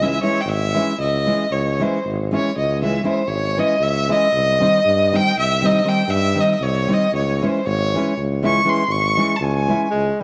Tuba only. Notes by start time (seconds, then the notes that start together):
Already playing: C#2
0.45 G#1
0.98 C#2
1.51 C#2
2.04 G#1
2.56 C#2
3.26 G#1
3.79 C#2
4.33 C2
4.85 G2
5.37 C2
6.07 G2
6.60 C2
7.13 C#2
7.65 G#1
8.17 C#2
8.87 G#1
9.40 C#2
9.93 C#2